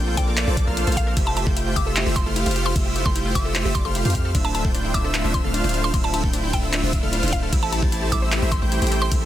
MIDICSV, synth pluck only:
0, 0, Header, 1, 2, 480
1, 0, Start_track
1, 0, Key_signature, -1, "major"
1, 0, Tempo, 397351
1, 1411, Time_signature, 4, 2, 24, 8
1, 11178, End_track
2, 0, Start_track
2, 0, Title_t, "Synth pluck"
2, 0, Program_c, 0, 84
2, 209, Note_on_c, 0, 79, 93
2, 323, Note_off_c, 0, 79, 0
2, 1171, Note_on_c, 0, 77, 93
2, 1459, Note_off_c, 0, 77, 0
2, 1532, Note_on_c, 0, 81, 94
2, 1608, Note_off_c, 0, 81, 0
2, 1652, Note_on_c, 0, 81, 74
2, 1729, Note_off_c, 0, 81, 0
2, 2129, Note_on_c, 0, 86, 94
2, 2242, Note_off_c, 0, 86, 0
2, 2608, Note_on_c, 0, 84, 94
2, 2722, Note_off_c, 0, 84, 0
2, 3210, Note_on_c, 0, 84, 90
2, 3667, Note_off_c, 0, 84, 0
2, 3692, Note_on_c, 0, 84, 89
2, 3802, Note_off_c, 0, 84, 0
2, 4050, Note_on_c, 0, 86, 96
2, 4163, Note_off_c, 0, 86, 0
2, 4527, Note_on_c, 0, 84, 97
2, 4607, Note_off_c, 0, 84, 0
2, 4651, Note_on_c, 0, 84, 80
2, 4728, Note_off_c, 0, 84, 0
2, 5371, Note_on_c, 0, 81, 91
2, 5448, Note_off_c, 0, 81, 0
2, 5492, Note_on_c, 0, 81, 78
2, 5569, Note_off_c, 0, 81, 0
2, 5970, Note_on_c, 0, 86, 92
2, 6083, Note_off_c, 0, 86, 0
2, 6452, Note_on_c, 0, 84, 93
2, 6564, Note_off_c, 0, 84, 0
2, 7056, Note_on_c, 0, 84, 91
2, 7130, Note_off_c, 0, 84, 0
2, 7174, Note_on_c, 0, 84, 79
2, 7250, Note_off_c, 0, 84, 0
2, 7297, Note_on_c, 0, 81, 92
2, 7370, Note_off_c, 0, 81, 0
2, 7414, Note_on_c, 0, 81, 77
2, 7490, Note_off_c, 0, 81, 0
2, 7895, Note_on_c, 0, 79, 92
2, 8005, Note_off_c, 0, 79, 0
2, 8849, Note_on_c, 0, 77, 95
2, 9139, Note_off_c, 0, 77, 0
2, 9212, Note_on_c, 0, 81, 94
2, 9288, Note_off_c, 0, 81, 0
2, 9331, Note_on_c, 0, 81, 79
2, 9409, Note_off_c, 0, 81, 0
2, 9808, Note_on_c, 0, 86, 92
2, 9922, Note_off_c, 0, 86, 0
2, 10288, Note_on_c, 0, 84, 98
2, 10402, Note_off_c, 0, 84, 0
2, 10892, Note_on_c, 0, 84, 93
2, 11178, Note_off_c, 0, 84, 0
2, 11178, End_track
0, 0, End_of_file